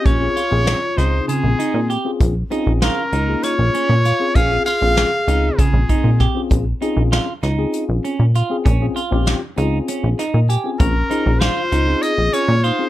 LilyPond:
<<
  \new Staff \with { instrumentName = "Trumpet" } { \time 7/8 \key bes \dorian \tempo 4 = 98 des''4. c''8 aes'4 r8 | r4 bes'4 des''4. | f''8 f''4. aes'4 r8 | r2. r8 |
r2. r8 | bes'4 c''4 ees''8 des''8 c''8 | }
  \new Staff \with { instrumentName = "Tine electric piano" } { \time 7/8 \key bes \dorian << { r2. r8 | r2. r8 | r2. r8 | r2. r8 |
r2 r8 ees''8 aes''8 | r2. r8 | } \\ { r16 <c' des' f' aes'>16 r16 <c' des' f' aes'>8 r16 <des c' f' aes'>4 r8. <c' des' f' aes'>16~ | <c' des' f' aes'>16 r16 <c' des' f' aes'>8. r8 <bes des' f' aes'>4 r8 <c' des' f' aes'>16 | r16 <c' des' f' aes'>16 r16 <c' des' f' aes'>8 r16 <des c' f' aes'>4 r8. <c' des' f' aes'>16~ | <c' des' f' aes'>16 r16 <c' des' f' aes'>8. r8 <c' des' f' aes'>4 r8 <c' des' f' aes'>16 |
r16 <c' des' f' aes'>16 r16 <c' des' f' g'>8 r16 <c' des' f' aes'>4 r8. <c' des' f' aes'>16~ | <c' des' f' aes'>16 r16 <des' f' aes' c''>8. r8 <c' des' f' aes'>4 r8 <c' des' f' aes'>16 | } >> }
  \new Staff \with { instrumentName = "Vibraphone" } { \time 7/8 \key bes \dorian f'4. ees'8 c'4 r8 | r4 des'4 f'4. | aes'8 aes'4. c'4 r8 | r2. r8 |
r2. r8 | des'4 f'4 aes'8 f'8 ees'8 | }
  \new Staff \with { instrumentName = "Clean electric guitar" } { \time 7/8 \key bes \dorian des'8 f'4 ees'8 des8 ees'8 g'8 | r8 ees'8 f'8 ees'4 des'8 f'8 | des'8 f'4 ees'8 des8 ees'8 g'8 | r8 ees'8 f'8 ees'4 des'8 f'8 |
des'8 f'4 ees'8 des'8 ees'8 g'8 | r8 ees'8 f'8 ees'4 des'8 f'8 | }
  \new Staff \with { instrumentName = "Analog synth bass" } { \clef bass \time 7/8 \key bes \dorian bes,,8 r16 bes,,8 r16 des,8 r16 bes,,16 r16 bes,8 r16 | bes,,8 r16 bes,,8 r16 des,8 r16 bes,,16 r16 bes,8 r16 | bes,,8 r16 bes,,8 r16 des,8 r16 bes,,16 r16 bes,8 r16 | bes,,8 r16 bes,,8 r16 des,8 r16 bes,,16 r16 bes,8 r16 |
bes,,8 r16 bes,,8 r16 des,8 r16 bes,,16 r16 bes,8 r16 | bes,,8 r16 bes,,8 r16 des,8 r16 bes,,16 r16 bes,8 r16 | }
  \new DrumStaff \with { instrumentName = "Drums" } \drummode { \time 7/8 <hh bd>8 hh8 <hh sn>8 <hh sn>8 hh8 hh8 hh8 | <hh bd>8 hh8 <hh sn>8 hh8 <hh sn>8 hh8 hh8 | <hh bd>8 hh8 <hh sn>8 hh8 <hh bd sn>8 <hh bd>8 <hh bd sn>8 | <hh bd>8 hh8 <hh sn>8 <hh sn>8 hh8 hh8 hh8 |
<hh bd>8 hh8 <hh sn>8 hh8 hh8 <hh sn>8 hh8 | <hh bd>8 hh8 <hh sn>8 hh8 hh8 hh8 hh8 | }
>>